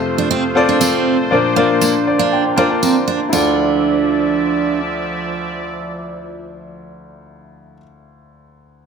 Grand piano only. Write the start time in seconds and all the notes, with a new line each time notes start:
Already playing: F2 C3 C4 F4 A4 C5 F5
0.55 C4 F4 A4 C5 D5
1.31 A#2 F3 D4 F4 A#4 C5 D5
1.56 D4 F4 A#4 C5 D5
2.07 D5
2.19 F5
2.33 G5
2.56 D4 F4 A#4 C5 D5
2.70 A5
2.83 A#5
3.29 D2 E4 F4
3.34 A4 D5